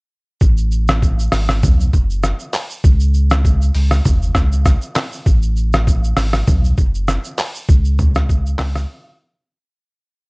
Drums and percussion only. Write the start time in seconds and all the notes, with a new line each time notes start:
0.41 kick, shaker
0.58 shaker
0.72 shaker
0.88 cross-stick, shaker
1.02 kick, shaker
1.19 shaker
1.32 cross-stick, open hi-hat, shaker
1.49 cross-stick, shaker
1.63 kick, mid tom, shaker
1.80 shaker
1.93 kick, shaker
2.10 shaker
2.23 cross-stick, shaker
2.39 shaker
2.53 clap, open hi-hat, shaker
2.70 shaker
2.84 kick, shaker
3.00 shaker
3.14 shaker
3.30 cross-stick, shaker
3.45 kick, shaker
3.62 shaker
3.74 open hi-hat, shaker
3.91 cross-stick, shaker
4.05 kick, mid tom, shaker
4.22 shaker
4.35 kick, cross-stick, shaker
4.52 shaker
4.66 kick, cross-stick, shaker
4.82 shaker
4.95 cross-stick, clap, open hi-hat, shaker
5.12 shaker
5.26 kick, shaker
5.42 shaker
5.56 shaker
5.73 cross-stick, shaker
5.87 kick, shaker
6.04 shaker
6.17 cross-stick, open hi-hat, shaker
6.33 cross-stick, shaker
6.47 kick, mid tom, shaker
6.65 shaker
6.78 kick, shaker
6.95 shaker
7.08 cross-stick, shaker
7.24 shaker
7.38 clap, open hi-hat, shaker
7.55 shaker
7.69 kick, shaker
7.85 shaker
7.99 mid tom, shaker
8.15 cross-stick, shaker
8.29 kick, shaker
8.46 shaker
8.59 cross-stick, clap, open hi-hat, shaker
8.76 cross-stick, shaker